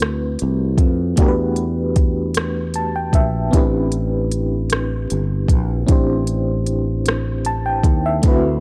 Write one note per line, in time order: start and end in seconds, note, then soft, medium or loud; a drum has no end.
0.00 0.36 D2 medium
0.00 1.13 A3 medium
0.00 1.13 C4 medium
0.00 1.14 E4 medium
0.00 1.18 F#4 medium
0.00 1.16 B4 medium
0.00 cross-stick medium
0.39 0.76 C2 medium
0.39 closed hi-hat soft
0.78 1.14 F2 medium
0.78 kick medium
0.78 closed hi-hat soft
1.16 3.10 E2 medium
1.16 3.48 A3 medium
1.16 3.49 D4 medium
1.16 3.50 F#4 medium
1.16 kick loud
1.16 closed hi-hat medium
1.20 3.50 G4 medium
1.20 1.26 A#4 medium
1.28 3.54 B4 medium
1.56 closed hi-hat soft
1.96 kick medium
1.96 closed hi-hat soft
2.34 cross-stick loud
2.34 closed hi-hat medium
2.74 2.93 A5 medium
2.74 closed hi-hat medium
2.96 3.13 G5 medium
3.13 3.49 A#1 medium
3.13 3.51 E5 medium
3.13 kick medium
3.13 closed hi-hat soft
3.51 5.06 A1 medium
3.51 3.58 B3 soft
3.51 5.84 D4 medium
3.51 5.85 E4 medium
3.51 kick medium
3.51 closed hi-hat medium
3.55 5.85 C4 medium
3.55 5.85 G4 medium
3.55 5.86 B4 medium
3.92 closed hi-hat soft
4.32 closed hi-hat medium
4.70 cross-stick medium
4.70 closed hi-hat medium
5.10 5.46 G1 medium
5.10 closed hi-hat soft
5.48 5.85 A#1 medium
5.48 kick medium
5.48 closed hi-hat soft
5.87 7.81 A1 medium
5.87 8.19 C4 medium
5.87 8.19 D4 medium
5.87 8.20 E4 medium
5.87 kick medium
5.87 closed hi-hat medium
5.91 8.21 G4 medium
5.91 8.21 C5 medium
6.27 closed hi-hat soft
6.66 closed hi-hat soft
7.06 cross-stick medium
7.06 closed hi-hat medium
7.45 7.64 A5 medium
7.45 closed hi-hat soft
7.66 8.03 G5 medium
7.83 8.20 D#2 medium
7.83 kick medium
7.83 closed hi-hat soft
8.06 8.42 E5 medium
8.22 8.60 D2 medium
8.22 8.60 A3 medium
8.22 8.60 C4 medium
8.22 8.60 E4 medium
8.22 kick medium
8.22 closed hi-hat medium
8.26 8.60 F#4 medium
8.26 8.60 B4 medium